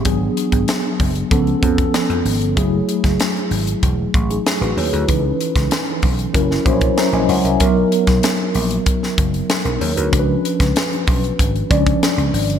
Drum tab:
HH |x-xxx-oxxxxxxxox|x-xxxxoxx-xxxxox|x-xxx-oxx-xxxxox|x-xxx-oxx-xxxxox|
SD |----o-------o---|---oo-------o---|---oo----o--o---|---oo----o--o---|
BD |o--o--o-o-oo----|o--o----o-o-----|o--o--o-o-oo----|o--o----o-o-----|

HH |x-xxxxoxxxxxxxox|
SD |---oo-------o---|
BD |o--o--o-o-oo----|